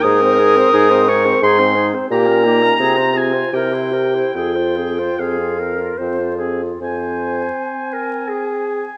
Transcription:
<<
  \new Staff \with { instrumentName = "Oboe" } { \time 3/4 \key f \minor \tempo 4 = 82 ees'''4. des'''8 c'''8 r8 | bes''4. aes''8 g''4 | g''4 f''4 r4 | aes''16 aes''16 aes''16 aes''16 aes''16 aes''16 aes''16 aes''16 aes''16 aes''16 aes''16 aes''16 | }
  \new Staff \with { instrumentName = "Flute" } { \time 3/4 \key f \minor aes'16 c''16 aes'16 c''16 aes'16 c''16 aes'16 c''16 aes'16 c''16 aes'16 c''16 | g'16 bes'16 g'16 bes'16 aes'16 c''16 aes'16 c''16 bes'16 c''16 bes'16 c''16 | aes'16 c''16 aes'16 c''16 aes'8 bes'8 c''8 aes'8 | aes''2. | }
  \new Staff \with { instrumentName = "French horn" } { \time 3/4 \key f \minor bes'2 aes'8 r8 | g'8 ees'8 f'4 e'8 g'8 | f'2~ f'8 r8 | c'2. | }
  \new Staff \with { instrumentName = "Clarinet" } { \time 3/4 \key f \minor ees'16 c'16 ees'16 c'16 ees'16 c'16 ees'16 c'16 ees'16 c'16 ees'16 c'16 | bes16 des'16 bes16 des'16 c'16 f'16 c'16 f'16 g'16 e'16 g'16 e'16 | c'16 f'16 c'16 f'16 c'16 f'16 c'16 f'16 c'16 f'16 c'16 f'16 | c''4. bes'8 aes'4 | }
  \new Staff \with { instrumentName = "Bassoon" } { \clef bass \time 3/4 \key f \minor aes,4 aes,4 aes,4 | bes,4 c4 c4 | f,4 f,4 f,4 | f,4 r2 | }
>>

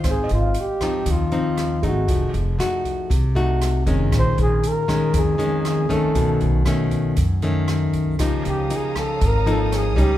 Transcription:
<<
  \new Staff \with { instrumentName = "Violin section" } { \time 4/4 \key aes \major \tempo 4 = 118 r1 | r1 | r1 | r1 |
<des'' f'' bes'' ees'''>1 | }
  \new Staff \with { instrumentName = "Grand piano" } { \time 4/4 \key aes \major c''16 ees''16 f''2. aes'8~ | aes'8 r2. r8 | r1 | r1 |
g'2. r4 | }
  \new Staff \with { instrumentName = "Flugelhorn" } { \time 4/4 \key aes \major aes'8 f'8 g'4 f'4. ges'8~ | ges'8 r2. r8 | c''8 aes'8 bes'4 aes'4. a'8~ | a'8 r2. r8 |
r8 g'8 aes'8 a'8 bes'8 a'8 aes'8 g'8 | }
  \new Staff \with { instrumentName = "Nylon-string guitar" } { \time 4/4 \key aes \major << { <ees' f' c''>4 r8 <f c' ees'>4 <f c' ees'>4 <a ees'>8~ | <a ees'>4 <a ees' ges'>4 r8 <a ees' ges'>4 <ees aes des'>8~ | <ees aes des'>4. <ees aes des'>4 <ees aes des'>4 <ees a des'>8~ | <ees a des'>4 <dis a cis'>4 r8 <dis a cis'>4. |
<f bes ees'>4 <f bes ees'>4 r8 <f bes ees'>4 <g des' ees'>8 | } \\ { aes,2 ees2 | f2 c2 | bes,2 f,2 | b,2 fis,2 |
des2 aes,2 | } >> }
  \new Staff \with { instrumentName = "Upright bass" } { \clef bass \time 4/4 \key aes \major aes,,8 aes,,8 r4 ees,4. aes,,8 | f,,8 f,,8 r4 c,4. f,,8 | bes,,8 bes,,8 r4 f,4. bes,,8 | b,,8 b,,8 r4 fis,4. b,,8 |
des,8 des,8 r4 aes,,4. des,8 | }
  \new DrumStaff \with { instrumentName = "Drums" } \drummode { \time 4/4 <hh bd ss>8 hh8 hh8 <hh bd ss>8 <hh bd>8 hh8 <hh ss>8 <hh bd>8 | <hh bd>8 hh8 <hh ss>8 <hh bd>8 <hh bd>8 hh8 <hh ss>8 <hh bd>8 | <hh bd ss>8 hh8 hh8 <hh bd ss>8 <hh bd>8 hh8 <hh ss>8 <hh bd>8 | <hh bd>8 hh8 <hh ss>8 <hh bd>8 <hh bd>8 hh8 <hh ss>8 <hh bd>8 |
<hh bd ss>8 hh8 hh8 <hh bd ss>8 <hh bd>8 hh8 <hh ss>8 <hh bd>8 | }
>>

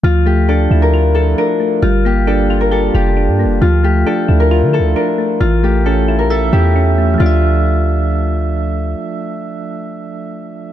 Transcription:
<<
  \new Staff \with { instrumentName = "Harp" } { \time 4/4 \key d \minor \tempo 4 = 134 f'8 g'8 a'8. bes'16 r8 a'8 bes'8 r8 | f'8 g'8 a'8. bes'16 a'8 g'4. | f'8 g'8 a'8. bes'16 r8 a'8 bes'8 r8 | f'8 g'8 a'8. bes'16 a'8 g'4. |
f'2. r4 | r1 | }
  \new Staff \with { instrumentName = "Synth keys" } { \time 4/4 \key d \minor f8 a8 d'8 e'8 f'8 e'8 d'8 a8 | g8 bes8 d'8 f'8 g'8 f'8 d'8 bes8 | f8 a8 d'8 e'8 f'8 e'8 d'8 a8 | e8 a8 cis'8 e'8 e''8 e'8 cis'8 a8 |
<f a d' e''>1~ | <f a d' e''>1 | }
  \new Staff \with { instrumentName = "808-style bass" } { \clef bass \time 4/4 \key d \minor d,4. d,4. r4 | g,,2~ g,,8 f,,8. g,16. f,,16. | d,4 r8 d,8. d16. d,16. r4 | a,,4.~ a,,16 bes,,8. e,4. |
d,1 | r1 | }
>>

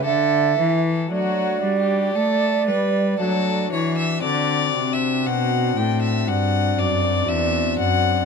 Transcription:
<<
  \new Staff \with { instrumentName = "Flute" } { \time 4/4 \key d \major \tempo 4 = 58 e''8 r8 d''2~ d''8 r8 | r2 d''2 | }
  \new Staff \with { instrumentName = "Violin" } { \time 4/4 \key d \major a'4 \tuplet 3/2 { fis'4 g'8 } a'8 b'8 a'8 cis''16 e''16 | \tuplet 3/2 { d''4 e''8 } fis''8 g''16 e''16 fis''8 d''8 e''8 fis''8 | }
  \new Staff \with { instrumentName = "Pipe organ" } { \time 4/4 \key d \major r4 <a d' fis'>4 r4 <a d' fis'>4 | <c' d' fis'>1 | }
  \new Staff \with { instrumentName = "Pipe organ" } { \clef bass \time 4/4 \key d \major d8 e8 fis8 g8 a8 g8 fis8 e8 | d8 c8 b,8 a,8 g,8 fis,8 e,8 fis,8 | }
  \new Staff \with { instrumentName = "Cello" } { \clef bass \time 4/4 \key d \major d8 e8 fis8 g8 a8 g8 fis8 e8 | d8 c8 b,8 a,8 g,8 fis,8 e,8 fis,8 | }
>>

